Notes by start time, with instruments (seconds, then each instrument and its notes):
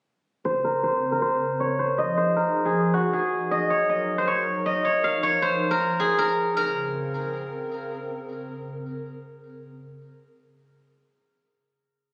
0.45 analog synth pad C#3 C4 A#4, guzheng C5
0.64 guzheng A#4
0.83 guzheng C5
1.12 guzheng A#4
1.22 guzheng C5
1.60 guzheng C#5
1.79 guzheng C5
1.98 analog synth pad F3 D#4 G#4, guzheng D#5
2.17 guzheng C5
2.36 guzheng A#4
2.65 guzheng G#4
2.94 guzheng F#4
3.13 guzheng G#4
3.51 analog synth pad F#3 D#4 A#4, guzheng D#5
3.70 guzheng C#5
3.89 guzheng D#5
4.18 guzheng C5
4.28 guzheng C#5
4.66 guzheng D#5
4.85 guzheng C#5
5.04 analog synth pad F3, guzheng F5
5.23 guzheng C#5
5.42 guzheng C5
5.71 guzheng A#4
6.00 guzheng G#4
6.19 guzheng A#4
6.57 analog synth pad C#3 C4 A#4, guzheng A#4